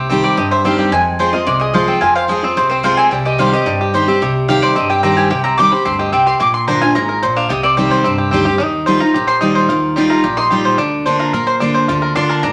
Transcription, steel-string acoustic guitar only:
0.00 0.35 C3 medium
0.10 0.36 D#3 medium
0.10 0.37 G3 medium
0.10 0.37 C4 medium
0.10 0.37 G4 loud
0.37 0.90 G2 medium
0.64 0.91 D#3 medium
0.64 0.91 G3 medium
0.64 0.91 C4 medium
0.64 0.92 G4 medium
0.92 1.44 F2 medium
1.19 1.33 F3 medium
1.19 1.33 G#3 loud
1.19 1.33 C4 medium
1.19 1.32 F4 loud
1.33 1.47 C4 medium
1.33 1.46 F4 medium
1.46 1.99 C3 loud
1.74 2.00 F3 medium
1.74 2.01 G#3 medium
1.74 2.01 C4 medium
1.74 2.01 F4 loud
2.01 2.54 F2 medium
2.28 2.42 F3 medium
2.28 2.43 G#3 loud
2.28 2.43 C4 loud
2.28 2.42 F4 loud
2.43 2.57 C4 medium
2.43 2.56 F4 medium
2.57 3.09 C3 loud
2.83 3.10 F3 medium
2.83 3.10 G#3 loud
2.83 3.10 C4 loud
2.83 3.11 F4 loud
3.11 3.64 C3 medium
3.38 3.52 D#3 medium
3.38 3.52 G3 loud
3.38 3.53 C4 loud
3.38 3.51 G4 loud
3.52 3.67 C4 soft
3.52 3.66 G4 medium
3.66 4.18 G2 medium
3.94 4.07 D#3 medium
3.94 4.07 G3 medium
3.94 4.08 C4 medium
3.94 4.06 G4 loud
4.08 4.22 C4 soft
4.08 4.21 G4 medium
4.22 4.74 C3 medium
4.48 4.75 D#3 medium
4.48 4.75 G3 medium
4.48 4.75 C4 loud
4.48 4.75 G4 loud
4.76 5.28 G2 medium
5.04 5.30 D#3 medium
5.04 5.30 G3 medium
5.04 5.30 C4 loud
5.04 5.30 G4 medium
5.31 5.83 C3 medium
5.59 5.72 D#3 medium
5.59 5.72 G3 medium
5.59 5.72 C4 medium
5.59 5.71 G4 loud
5.72 5.86 C4 medium
5.72 5.85 G4 medium
5.85 6.12 G2 loud
6.13 6.39 C3 medium
6.40 6.93 A#2 medium
6.68 6.81 D3 medium
6.68 6.81 A#3 loud
6.68 6.82 D4 medium
6.68 6.80 F4 loud
6.82 6.96 D4 medium
6.82 6.95 F4 medium
6.96 7.22 G#2 loud
7.23 7.49 A#2 medium
7.50 8.02 C3 loud
7.77 8.03 D#3 loud
7.77 8.04 G3 loud
7.77 8.04 C4 loud
7.77 8.04 G4 loud
8.05 8.57 G2 medium
8.33 8.46 D#3 medium
8.33 8.46 G3 medium
8.33 8.46 C4 loud
8.33 8.45 G4 loud
8.47 8.60 C4 medium
8.47 8.60 G4 medium
8.60 8.86 D#3 medium
8.87 9.00 D#3 medium
8.87 9.01 G3 medium
8.87 9.01 D#4 loud
8.87 9.00 F4 loud
9.01 9.15 D#4 soft
9.01 9.14 F4 medium
9.16 9.67 A#2 medium
9.41 9.68 D#3 medium
9.41 9.68 G3 medium
9.41 9.68 D#4 loud
9.41 9.69 F4 medium
9.70 9.96 D#3 medium
9.97 10.23 D#3 medium
9.97 10.23 G3 medium
9.97 10.23 D#4 loud
9.97 10.24 F4 loud
10.24 10.76 A#2 medium
10.51 10.77 D#3 medium
10.51 10.78 G3 medium
10.51 10.78 D#4 medium
10.51 10.78 F4 loud
10.79 11.05 D3 medium
11.06 11.32 D3 medium
11.06 11.33 A#3 medium
11.06 11.33 D4 loud
11.06 11.33 F4 medium
11.34 11.60 A#3 medium
11.61 11.87 D3 medium
11.61 11.88 A#3 medium
11.61 11.88 D4 loud
11.61 11.88 F4 medium
11.89 12.14 D3 medium
12.15 12.42 D3 medium
12.15 12.42 A#3 medium
12.15 12.43 D4 medium
12.15 12.43 F4 loud
12.43 12.53 G#2 medium

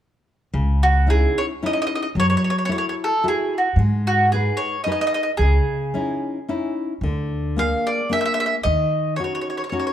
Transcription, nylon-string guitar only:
0.53 1.06 C#3 medium
1.06 1.50 C#4 soft
1.06 1.51 D#4 soft
1.06 1.51 E4 soft
1.62 2.06 C#4 soft
1.62 2.06 D#4 soft
1.62 2.06 E4 soft
2.16 2.68 F#3 soft
2.69 3.12 E4 soft
2.69 3.13 F#4 soft
2.69 3.12 A4 soft
3.24 3.67 E4 soft
3.24 3.67 F#4 soft
3.24 3.67 A4 medium
3.79 4.30 G#3 medium
4.32 4.75 D#4 soft
4.32 4.75 G#4 soft
4.32 4.76 B4 soft
4.86 5.29 D#4 soft
4.86 5.30 G#4 soft
4.86 5.30 B4 soft
5.41 5.93 C#3 soft
5.94 6.37 C#4 soft
5.94 6.38 D#4 soft
5.94 6.38 E4 soft
6.49 6.92 C#4 soft
6.49 6.92 D#4 soft
6.49 6.92 E4 soft
7.03 7.56 D3 medium
7.57 8.00 A#3 soft
7.57 8.01 D4 soft
7.57 8.01 G#4 soft
8.09 8.53 A#3 soft
8.09 8.54 D4 soft
8.09 8.55 G#4 soft
8.65 9.17 D#3 soft
9.19 9.62 C#4 soft
9.19 9.62 D#4 soft
9.19 9.63 F#4 soft
9.72 9.93 C#4 soft
9.72 9.93 D#4 soft
9.72 9.93 F#4 medium

